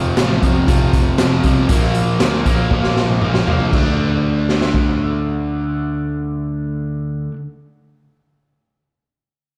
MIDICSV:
0, 0, Header, 1, 4, 480
1, 0, Start_track
1, 0, Key_signature, -1, "minor"
1, 0, Tempo, 509338
1, 1596, Time_signature, 4, 2, 24, 8
1, 9024, End_track
2, 0, Start_track
2, 0, Title_t, "Overdriven electric guitar"
2, 0, Program_c, 0, 29
2, 0, Note_on_c, 0, 41, 92
2, 0, Note_on_c, 0, 48, 90
2, 0, Note_on_c, 0, 53, 101
2, 144, Note_off_c, 0, 41, 0
2, 149, Note_off_c, 0, 48, 0
2, 155, Note_on_c, 0, 41, 75
2, 161, Note_on_c, 0, 48, 83
2, 166, Note_off_c, 0, 53, 0
2, 170, Note_on_c, 0, 53, 84
2, 388, Note_off_c, 0, 41, 0
2, 393, Note_off_c, 0, 48, 0
2, 400, Note_on_c, 0, 41, 80
2, 404, Note_on_c, 0, 48, 83
2, 406, Note_off_c, 0, 53, 0
2, 410, Note_on_c, 0, 53, 83
2, 621, Note_off_c, 0, 41, 0
2, 631, Note_off_c, 0, 48, 0
2, 633, Note_on_c, 0, 41, 75
2, 636, Note_off_c, 0, 53, 0
2, 640, Note_on_c, 0, 53, 90
2, 642, Note_on_c, 0, 48, 85
2, 1104, Note_off_c, 0, 41, 0
2, 1108, Note_off_c, 0, 48, 0
2, 1115, Note_on_c, 0, 41, 77
2, 1119, Note_on_c, 0, 48, 74
2, 1120, Note_off_c, 0, 53, 0
2, 1123, Note_on_c, 0, 53, 87
2, 1347, Note_off_c, 0, 41, 0
2, 1348, Note_off_c, 0, 48, 0
2, 1358, Note_on_c, 0, 41, 78
2, 1359, Note_on_c, 0, 48, 96
2, 1361, Note_off_c, 0, 53, 0
2, 1365, Note_on_c, 0, 53, 96
2, 1583, Note_off_c, 0, 41, 0
2, 1583, Note_off_c, 0, 48, 0
2, 1587, Note_on_c, 0, 46, 89
2, 1588, Note_off_c, 0, 53, 0
2, 1592, Note_on_c, 0, 53, 89
2, 1594, Note_on_c, 0, 58, 109
2, 2054, Note_off_c, 0, 53, 0
2, 2055, Note_off_c, 0, 46, 0
2, 2062, Note_off_c, 0, 58, 0
2, 2065, Note_on_c, 0, 53, 82
2, 2067, Note_on_c, 0, 46, 87
2, 2073, Note_on_c, 0, 58, 86
2, 2297, Note_off_c, 0, 46, 0
2, 2307, Note_off_c, 0, 58, 0
2, 2308, Note_on_c, 0, 46, 72
2, 2309, Note_off_c, 0, 53, 0
2, 2318, Note_on_c, 0, 58, 83
2, 2320, Note_on_c, 0, 53, 76
2, 2538, Note_off_c, 0, 46, 0
2, 2544, Note_off_c, 0, 53, 0
2, 2549, Note_off_c, 0, 58, 0
2, 2549, Note_on_c, 0, 46, 77
2, 2555, Note_on_c, 0, 53, 79
2, 2560, Note_on_c, 0, 58, 85
2, 3016, Note_off_c, 0, 46, 0
2, 3023, Note_off_c, 0, 53, 0
2, 3027, Note_off_c, 0, 58, 0
2, 3027, Note_on_c, 0, 46, 76
2, 3034, Note_on_c, 0, 53, 70
2, 3038, Note_on_c, 0, 58, 77
2, 3250, Note_off_c, 0, 46, 0
2, 3256, Note_off_c, 0, 53, 0
2, 3259, Note_off_c, 0, 58, 0
2, 3261, Note_on_c, 0, 46, 76
2, 3267, Note_on_c, 0, 53, 84
2, 3270, Note_on_c, 0, 58, 75
2, 3480, Note_off_c, 0, 46, 0
2, 3484, Note_on_c, 0, 50, 79
2, 3498, Note_off_c, 0, 53, 0
2, 3500, Note_off_c, 0, 58, 0
2, 3505, Note_on_c, 0, 57, 88
2, 3524, Note_on_c, 0, 62, 104
2, 6868, Note_off_c, 0, 50, 0
2, 6889, Note_off_c, 0, 57, 0
2, 6908, Note_off_c, 0, 62, 0
2, 9024, End_track
3, 0, Start_track
3, 0, Title_t, "Picked electric bass"
3, 0, Program_c, 1, 34
3, 0, Note_on_c, 1, 29, 91
3, 129, Note_off_c, 1, 29, 0
3, 173, Note_on_c, 1, 33, 82
3, 371, Note_off_c, 1, 33, 0
3, 401, Note_on_c, 1, 29, 83
3, 603, Note_off_c, 1, 29, 0
3, 641, Note_on_c, 1, 29, 85
3, 843, Note_off_c, 1, 29, 0
3, 877, Note_on_c, 1, 29, 78
3, 1081, Note_off_c, 1, 29, 0
3, 1120, Note_on_c, 1, 29, 82
3, 1322, Note_off_c, 1, 29, 0
3, 1353, Note_on_c, 1, 36, 82
3, 1558, Note_off_c, 1, 36, 0
3, 1597, Note_on_c, 1, 34, 90
3, 1801, Note_off_c, 1, 34, 0
3, 1845, Note_on_c, 1, 34, 86
3, 2045, Note_off_c, 1, 34, 0
3, 2074, Note_on_c, 1, 38, 80
3, 2279, Note_off_c, 1, 38, 0
3, 2310, Note_on_c, 1, 34, 75
3, 2517, Note_off_c, 1, 34, 0
3, 2555, Note_on_c, 1, 34, 85
3, 2759, Note_off_c, 1, 34, 0
3, 2799, Note_on_c, 1, 34, 71
3, 3002, Note_off_c, 1, 34, 0
3, 3037, Note_on_c, 1, 34, 72
3, 3241, Note_off_c, 1, 34, 0
3, 3268, Note_on_c, 1, 36, 70
3, 3476, Note_off_c, 1, 36, 0
3, 3511, Note_on_c, 1, 38, 82
3, 6857, Note_off_c, 1, 38, 0
3, 9024, End_track
4, 0, Start_track
4, 0, Title_t, "Drums"
4, 159, Note_on_c, 9, 42, 76
4, 161, Note_on_c, 9, 38, 94
4, 253, Note_off_c, 9, 42, 0
4, 256, Note_off_c, 9, 38, 0
4, 401, Note_on_c, 9, 42, 63
4, 403, Note_on_c, 9, 36, 85
4, 495, Note_off_c, 9, 42, 0
4, 497, Note_off_c, 9, 36, 0
4, 641, Note_on_c, 9, 42, 81
4, 643, Note_on_c, 9, 36, 111
4, 736, Note_off_c, 9, 42, 0
4, 737, Note_off_c, 9, 36, 0
4, 879, Note_on_c, 9, 42, 68
4, 880, Note_on_c, 9, 36, 88
4, 973, Note_off_c, 9, 42, 0
4, 974, Note_off_c, 9, 36, 0
4, 1113, Note_on_c, 9, 42, 80
4, 1116, Note_on_c, 9, 38, 100
4, 1207, Note_off_c, 9, 42, 0
4, 1210, Note_off_c, 9, 38, 0
4, 1351, Note_on_c, 9, 42, 57
4, 1358, Note_on_c, 9, 36, 75
4, 1446, Note_off_c, 9, 42, 0
4, 1452, Note_off_c, 9, 36, 0
4, 1592, Note_on_c, 9, 42, 82
4, 1596, Note_on_c, 9, 36, 102
4, 1686, Note_off_c, 9, 42, 0
4, 1690, Note_off_c, 9, 36, 0
4, 1722, Note_on_c, 9, 38, 28
4, 1816, Note_off_c, 9, 38, 0
4, 1833, Note_on_c, 9, 42, 61
4, 1927, Note_off_c, 9, 42, 0
4, 2073, Note_on_c, 9, 42, 80
4, 2076, Note_on_c, 9, 38, 101
4, 2167, Note_off_c, 9, 42, 0
4, 2170, Note_off_c, 9, 38, 0
4, 2316, Note_on_c, 9, 36, 77
4, 2317, Note_on_c, 9, 42, 63
4, 2410, Note_off_c, 9, 36, 0
4, 2411, Note_off_c, 9, 42, 0
4, 2555, Note_on_c, 9, 36, 102
4, 2649, Note_off_c, 9, 36, 0
4, 2672, Note_on_c, 9, 38, 50
4, 2766, Note_off_c, 9, 38, 0
4, 2794, Note_on_c, 9, 38, 61
4, 2888, Note_off_c, 9, 38, 0
4, 2916, Note_on_c, 9, 47, 59
4, 3010, Note_off_c, 9, 47, 0
4, 3029, Note_on_c, 9, 45, 73
4, 3124, Note_off_c, 9, 45, 0
4, 3150, Note_on_c, 9, 38, 64
4, 3244, Note_off_c, 9, 38, 0
4, 3273, Note_on_c, 9, 43, 86
4, 3367, Note_off_c, 9, 43, 0
4, 3394, Note_on_c, 9, 43, 68
4, 3488, Note_off_c, 9, 43, 0
4, 3513, Note_on_c, 9, 36, 97
4, 3515, Note_on_c, 9, 49, 79
4, 3607, Note_off_c, 9, 36, 0
4, 3610, Note_off_c, 9, 49, 0
4, 4231, Note_on_c, 9, 38, 52
4, 4326, Note_off_c, 9, 38, 0
4, 4350, Note_on_c, 9, 38, 65
4, 4444, Note_off_c, 9, 38, 0
4, 4469, Note_on_c, 9, 36, 78
4, 4563, Note_off_c, 9, 36, 0
4, 9024, End_track
0, 0, End_of_file